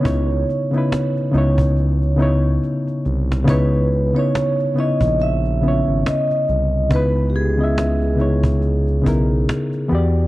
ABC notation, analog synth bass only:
X:1
M:4/4
L:1/16
Q:"Swing 16ths" 1/4=70
K:C#dor
V:1 name="Analog synth bass" clef=bass
C,,2 z4 C,,6 z2 ^B,,,2 | C,,3 z4 A,,,4 G,,, z2 ^B,,,2 | C,,8- C,,2 B,,,2 z2 E,,2 |]